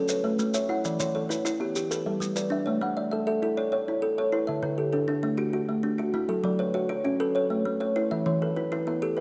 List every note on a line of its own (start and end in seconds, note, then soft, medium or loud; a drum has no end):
0.08 0.23 B4 medium
0.08 0.54 C#5 medium
0.08 maracas medium
0.24 0.54 A3 medium
0.24 0.70 B4 medium
0.39 0.69 A3 medium
0.39 maracas medium
0.54 0.85 C#5 medium
0.54 1.00 E5 medium
0.54 maracas medium
0.69 0.99 E4 medium
0.69 1.00 F#5 medium
0.85 1.15 E3 medium
0.85 1.15 D5 medium
0.85 maracas medium
1.00 1.30 E3 medium
1.00 1.45 C#5 medium
1.00 maracas medium
1.15 1.61 A4 medium
1.15 1.60 C#5 medium
1.29 1.60 E4 medium
1.29 1.75 B4 medium
1.29 maracas medium
1.45 1.75 E4 medium
1.45 1.91 B4 medium
1.45 maracas medium
1.60 1.75 B3 medium
1.60 1.75 G4 medium
1.76 1.91 G4 medium
1.76 maracas medium
1.91 2.05 A4 medium
1.91 2.36 B4 medium
1.91 maracas medium
2.06 2.36 G3 medium
2.06 2.51 A4 medium
2.20 2.51 G3 medium
2.20 maracas medium
2.36 2.66 B4 medium
2.36 2.81 D5 medium
2.36 maracas medium
2.50 2.81 D4 medium
2.50 2.82 E5 medium
2.66 2.97 A3 medium
2.66 2.96 C#5 medium
2.81 3.12 A3 medium
2.81 3.27 F#5 medium
2.97 3.42 D5 medium
2.97 3.10 E5 medium
3.11 3.42 A4 medium
3.11 3.57 E5 medium
3.27 3.42 A4 medium
3.27 3.72 E5 medium
3.42 3.72 E4 medium
3.42 3.88 A4 medium
3.57 3.71 C#5 medium
3.57 4.03 D5 medium
3.72 4.17 C#5 medium
3.88 4.18 E4 medium
4.02 4.32 A4 medium
4.18 4.48 C#5 medium
4.18 4.63 C#5 medium
4.32 4.63 E4 medium
4.32 4.62 B4 medium
4.47 4.78 D3 medium
4.47 4.78 E5 medium
4.63 4.93 D3 medium
4.63 5.08 B4 medium
4.78 5.23 G4 medium
4.78 4.91 A4 medium
4.93 5.23 D4 medium
4.93 5.38 A4 medium
5.08 5.22 D4 medium
5.08 5.54 A4 medium
5.23 5.53 A3 medium
5.23 5.69 D4 medium
5.38 5.52 F#4 medium
5.38 5.83 G4 medium
5.53 5.97 F#4 medium
5.53 5.98 F#4 medium
5.69 5.99 A3 medium
5.83 6.14 D4 medium
5.98 6.44 F#4 medium
5.98 6.29 F#4 medium
6.14 6.44 A3 medium
6.14 6.44 E4 medium
6.29 6.59 F#3 medium
6.29 6.59 A4 medium
6.44 6.74 F#3 medium
6.44 6.90 D5 medium
6.59 7.05 B4 medium
6.59 6.73 C#5 medium
6.74 7.05 F#4 medium
6.74 7.20 C#5 medium
6.89 7.04 F#4 medium
6.89 7.34 C#5 medium
7.05 7.20 C#4 medium
7.05 7.50 F#4 medium
7.20 7.35 A4 medium
7.20 7.50 B4 medium
7.35 7.79 C#5 medium
7.35 7.80 C#5 medium
7.50 7.81 A3 medium
7.65 7.96 A3 medium
7.80 8.11 C#5 medium
7.80 8.26 C#5 medium
7.96 8.26 E4 medium
7.96 8.26 B4 medium
8.11 8.41 E3 medium
8.11 8.41 E5 medium
8.26 8.56 E3 medium
8.26 8.72 C#5 medium
8.42 8.87 A4 medium
8.42 8.55 B4 medium
8.56 8.87 E4 medium
8.56 9.02 B4 medium
8.72 8.86 E4 medium
8.72 9.17 B4 medium
8.87 9.02 B3 medium
8.87 9.21 E4 medium
9.02 9.17 G4 medium
9.02 9.21 A4 medium
9.17 9.21 B4 medium